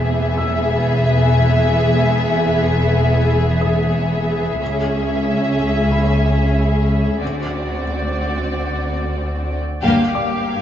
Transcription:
Already playing: double bass section E1, cello section E2, viola section B3, violin section G#4 E5, felt piano D6
0.37 felt piano E6
3.61 felt piano E5 D#6
4.60 cello section C#2, double bass section C#2, viola section C#4, violin section G#4 E5
5.92 felt piano B5
7.21 cello section D2, double bass section D2, viola section C4, violin section F#4 D5
9.81 double bass section G1, cello section G2, viola section A#3, violin section G4 F5 D6
10.15 felt piano D5 D6
10.51 violin section G#6

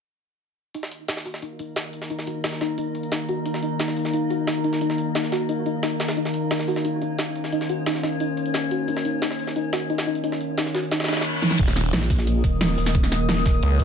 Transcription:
0.74 synth drone D#3 A#3 D#4, synth pluck D#4, closed hi-hat
0.83 snare
0.91 closed hi-hat
1.08 synth pluck D#4, snare, closed hi-hat
1.17 snare
1.25 synth pluck F#4, open hi-hat
1.34 snare
1.42 synth pluck D#4, closed hi-hat
1.59 synth pluck D#4, closed hi-hat
1.76 synth pluck D#4, snare, closed hi-hat
1.93 closed hi-hat
2.02 snare
2.10 synth pluck D#4, closed hi-hat
2.19 snare
2.27 synth pluck F#4, closed hi-hat
2.44 synth pluck D#4, snare, closed hi-hat
2.53 snare
2.61 synth pluck D#4, snare, closed hi-hat
2.78 synth pluck D#4, closed hi-hat
2.95 closed hi-hat
3.03 closed hi-hat
3.12 synth pluck D#4, snare, closed hi-hat
3.29 synth pluck F#4, closed hi-hat
3.46 synth pluck D#4, closed hi-hat
3.54 snare
3.63 synth pluck D#4, closed hi-hat
3.80 synth pluck D#4, snare, closed hi-hat
3.88 snare
3.96 open hi-hat
4.05 snare
4.13 synth pluck D#4, closed hi-hat
4.30 synth pluck F#4, closed hi-hat
4.47 synth pluck D#4, snare, closed hi-hat
4.64 synth pluck D#4, closed hi-hat
4.73 snare
4.81 synth pluck D#4, closed hi-hat
4.90 snare
4.98 closed hi-hat
5.15 synth pluck D#4, snare, closed hi-hat
5.24 snare
5.32 synth pluck F#4, snare, closed hi-hat
5.49 synth pluck D#4, closed hi-hat
5.66 synth pluck D#4, closed hi-hat
5.83 synth pluck D#4, snare, closed hi-hat
6.00 snare, closed hi-hat
6.08 snare, closed hi-hat
6.17 synth drone C#4, synth pluck D#4, closed hi-hat
6.25 snare
6.34 closed hi-hat
6.51 synth pluck D#4, snare, closed hi-hat
6.59 snare
6.68 synth pluck F#4, open hi-hat
6.76 snare
6.85 synth pluck D#4, closed hi-hat
7.02 synth pluck D#4, closed hi-hat
7.19 synth pluck D#4, snare, closed hi-hat
7.36 closed hi-hat
7.44 snare
7.52 synth pluck D#4, closed hi-hat
7.61 snare
7.69 synth pluck F#4, closed hi-hat
7.86 synth pluck D#4, snare, closed hi-hat
7.95 snare
8.03 synth pluck D#4, snare, closed hi-hat
8.20 synth pluck D#4, closed hi-hat
8.37 closed hi-hat
8.46 closed hi-hat
8.54 synth pluck D#4, snare, closed hi-hat
8.71 synth pluck F#4, closed hi-hat
8.88 synth pluck D#4, closed hi-hat
8.97 snare
9.05 synth pluck D#4, closed hi-hat
9.22 synth pluck D#4, snare, closed hi-hat
9.30 snare
9.39 open hi-hat
9.47 snare
9.56 synth pluck D#4, closed hi-hat
9.73 synth pluck F#4, snare, closed hi-hat
9.90 synth pluck D#4, closed hi-hat
9.98 snare, closed hi-hat
10.07 synth pluck D#4
10.15 closed hi-hat
10.24 synth pluck D#4, closed hi-hat
10.32 snare
10.41 closed hi-hat
10.58 synth pluck D#4, snare, closed hi-hat
10.66 snare
10.75 synth pluck F#4, snare, closed hi-hat
10.91 synth pluck D#4, snare, closed hi-hat, reverse cymbal
11.00 snare, closed hi-hat
11.04 snare, closed hi-hat
11.08 synth pluck D#4, snare, closed hi-hat
11.13 snare, closed hi-hat
11.17 snare, closed hi-hat
11.21 snare, closed hi-hat
11.42 snare
11.51 snare
11.59 detuned saw bass D#1, ambient pad A#3, kick, closed hi-hat, crash, impact
11.68 snare
11.76 ambient pad A#4 D#5, snare, closed hi-hat
11.89 ambient pad D#6
11.93 wobble bass A#1, snare, closed hi-hat
12.02 snare
12.10 kick, open hi-hat
12.19 snare
12.27 closed hi-hat
12.44 wobble bass D#1, kick, closed hi-hat
12.61 snare, closed hi-hat
12.78 wobble bass D#1, closed hi-hat, open hi-hat
12.86 snare
12.95 kick, closed hi-hat
13.03 snare
13.12 snare, closed hi-hat
13.29 snare, closed hi-hat
13.37 snare
13.46 kick, snare, closed hi-hat, open hi-hat
13.63 detuned saw bass C#2, closed hi-hat
13.80 kick, closed hi-hat

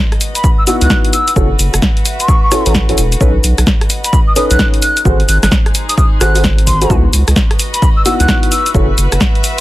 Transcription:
Already playing: string section D#4 F#4 G#4 B4 D#5
0.12 cross-stick, closed hi-hat
0.21 open hi-hat, shaker
0.35 flute B5, closed hi-hat, shaker
0.44 kick, shaker
0.58 flute E6
0.67 grand piano B3 D#4 E4 F#4, flute E6, open hi-hat, shaker
0.81 sub bass C#2, flute F#6, closed hi-hat, shaker
0.90 kick, snare, shaker
1.05 closed hi-hat
1.13 flute E6, open hi-hat, shaker
1.28 closed hi-hat, shaker
1.36 sub bass F#1, grand piano C#4 E4 F#4 A4, kick, shaker
1.57 sub bass F#1, string section E5, open hi-hat, shaker
1.74 sub bass F#1, cross-stick, closed hi-hat, shaker
1.82 kick, snare, shaker
1.97 closed hi-hat
2.05 open hi-hat, shaker
2.20 flute C#6, closed hi-hat, shaker
2.28 kick, shaker
2.43 flute C#6
2.52 grand piano C#4 E4 F#4 A4, cross-stick, open hi-hat, shaker
2.66 sub bass A1, grand piano C#4 E4 F#4 A4, closed hi-hat, shaker
2.75 kick, snare, shaker
2.89 grand piano C#4 E4 F#4 A4, closed hi-hat
2.98 sub bass E1, open hi-hat, shaker
3.12 closed hi-hat, shaker
3.21 sub bass B1, grand piano C#4 D#4 A4 B4, kick, shaker
3.42 sub bass B1, string section D#5, open hi-hat, shaker
3.58 sub bass B1, cross-stick, closed hi-hat, shaker
3.67 kick, snare, shaker
3.81 cross-stick, closed hi-hat
3.90 open hi-hat, shaker
4.04 flute B5, closed hi-hat, shaker
4.13 kick, shaker
4.27 flute D#6
4.36 grand piano C#4 D#4 A4 B4, flute D#6, open hi-hat, shaker
4.50 sub bass B1, flute F#6, closed hi-hat, shaker
4.59 kick, snare, shaker
4.74 closed hi-hat
4.82 string section D#4, flute F#6, open hi-hat, shaker
4.97 string section G#4, closed hi-hat, shaker
5.02 sub bass G#1, grand piano F#4 G#4 A4 C5, string section C5, kick, shaker
5.20 closed hi-hat
5.28 sub bass G#1, flute F#6, open hi-hat, shaker
5.43 sub bass G#1, flute F#6, cross-stick, snare, closed hi-hat, shaker
5.51 kick, snare, shaker
5.66 cross-stick, closed hi-hat
5.75 open hi-hat, shaker
5.89 flute D#6, closed hi-hat, shaker
5.97 flute D#6, kick, shaker
6.21 sub bass G#1, grand piano F#4 G#4 A4 C5, flute F#6, cross-stick, open hi-hat, shaker
6.35 grand piano F#4 G#4 A4 C5, open hi-hat, shaker
6.44 kick, snare, shaker
6.58 closed hi-hat
6.67 flute C6, kick, open hi-hat, shaker
6.81 grand piano F#4 G#4 A4 C5, closed hi-hat, shaker
6.90 sub bass C#2, grand piano B3 D#4 E4 F#4, string section F#4, kick, shaker
7.13 sub bass C#2, open hi-hat, shaker
7.20 string section B4
7.25 sub bass C#2, string section D#5, cross-stick, closed hi-hat, shaker
7.36 kick, snare, shaker
7.51 cross-stick, closed hi-hat
7.59 open hi-hat, shaker
7.74 flute B5, closed hi-hat, shaker
7.82 kick, shaker
7.97 flute E6
8.05 grand piano B3 D#4 E4 F#4, flute E6, open hi-hat, shaker
8.20 sub bass C#2, flute F#6, closed hi-hat, shaker
8.28 kick, snare, shaker
8.43 closed hi-hat
8.51 flute E6, open hi-hat, shaker
8.66 string section E5, closed hi-hat, shaker
8.74 sub bass F#1, grand piano C#4 E4 F#4 A4, kick, shaker
8.98 sub bass F#1, open hi-hat, shaker
9.12 sub bass F#1, cross-stick, closed hi-hat, shaker
9.21 kick, snare, shaker
9.35 closed hi-hat
9.44 open hi-hat, shaker

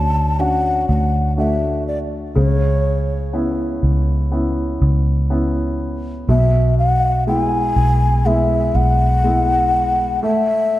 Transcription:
Already playing: fingered electric bass D2, grand piano D3 C#4 D4 F#4, bansuri A5
0.39 grand piano C#4 D4 F#4, bansuri F#5
0.88 fingered electric bass D2, bansuri F#5
1.37 grand piano A3 D4 F#4, bansuri E5
1.88 bansuri D5
2.35 fingered electric bass C#2, grand piano C#3, bansuri C#5
3.33 grand piano B3 C#4 E4
3.83 fingered electric bass C#2
4.32 grand piano B3 C#4 E4
4.82 fingered electric bass C#2
5.30 grand piano B3 C#4 E4
6.29 fingered electric bass B1, grand piano B2, bansuri E5
6.79 bansuri F#5
7.27 grand piano G#3 B3 E4, bansuri G5
7.40 bansuri G#5
7.76 fingered electric bass B1
8.26 grand piano G#3 B3 E4, bansuri E5
8.75 fingered electric bass B1, bansuri F#5
9.24 grand piano G#3 B3 E4
10.23 grand piano A3, bansuri E5

